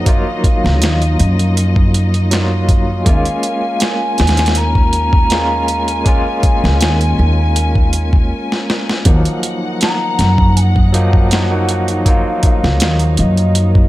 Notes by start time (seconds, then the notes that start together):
Already playing: F#2 D#3 F3 F#3 A#3 D#4 D#5
0.05 F#3 A#3 D#4 F4 F5, kick, closed hi-hat
0.44 kick, closed hi-hat
0.64 C#2, snare
0.82 D#2, snare, closed hi-hat
1.02 closed hi-hat
1.19 F#2, closed hi-hat
1.39 closed hi-hat
1.57 closed hi-hat
1.76 kick
1.94 closed hi-hat
2.14 closed hi-hat
2.31 F#3 A#3 D#4 F4, snare, closed hi-hat
2.69 kick, closed hi-hat
3.05 D#2 G#3 A#3 C#4 A#4 F5 G#5, kick, closed hi-hat
3.09 F4
3.25 closed hi-hat
3.43 closed hi-hat
3.80 G#5, snare, closed hi-hat
4.18 D#2, snare, closed hi-hat
4.27 snare, closed hi-hat
4.37 snare, closed hi-hat
4.46 snare, closed hi-hat
4.55 A#5, closed hi-hat
4.75 kick
4.93 closed hi-hat
5.13 kick
5.30 G#3 A#3 C#4 F4, snare, closed hi-hat
5.68 closed hi-hat
5.88 closed hi-hat
6.04 G#3 A#3 C#4 G#5, kick, closed hi-hat
6.08 F4
6.43 kick, closed hi-hat
6.64 C#2, snare
6.81 D#2, snare, closed hi-hat
7.01 closed hi-hat
7.19 D#2
7.56 closed hi-hat
7.75 kick
7.93 closed hi-hat
8.13 kick
8.52 snare
8.70 snare
8.89 snare
9.05 D#2 D#3 F3 F#3 A#3 D#4 F#5, kick, closed hi-hat
9.25 closed hi-hat
9.43 closed hi-hat
9.81 A#5, snare, closed hi-hat
10.19 F#2, snare, closed hi-hat
10.38 kick
10.57 F#5 G#5, closed hi-hat
10.76 kick
10.93 F3 F#3 A#3 D#4 F#5, closed hi-hat
11.13 kick
11.31 snare, closed hi-hat
11.51 F#3 A#3 D#4 F#4
11.69 closed hi-hat
11.88 closed hi-hat
12.05 F#3 A#3 D#4 F4 F5, kick, closed hi-hat
12.43 F5, kick, closed hi-hat
12.64 C#2, snare
12.80 D#2, snare, closed hi-hat
12.99 closed hi-hat
13.17 F#2 D#5, closed hi-hat
13.37 closed hi-hat
13.55 closed hi-hat
13.75 kick